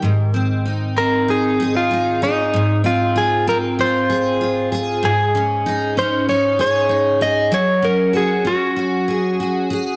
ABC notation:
X:1
M:4/4
L:1/16
Q:1/4=96
K:Ab
V:1 name="Clean electric guitar"
z6 B2 A3 F3 E2- | E2 F2 A2 B2 c6 z2 | A6 c2 d2 d4 e2 | d2 B2 A2 _G8 z2 |]
V:2 name="Steel-string acoustic guitar"
A,,2 C2 E2 C2 E2 A2 E2 A2 | A,,2 C2 F2 C2 F2 A2 F2 A2 | A,,2 D2 E2 D2 E2 A2 E2 A2 | _G,2 D2 _G2 D2 G2 A2 G2 A2 |]